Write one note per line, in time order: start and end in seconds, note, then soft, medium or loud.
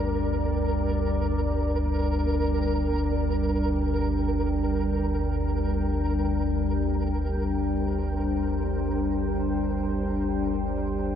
0.00 11.15 G1 medium
0.00 11.15 D2 medium
0.00 11.15 G3 medium
0.00 11.15 D4 medium
0.00 11.15 A#4 medium
0.00 6.38 D5 medium
0.00 11.15 G5 medium
6.02 11.15 C5 medium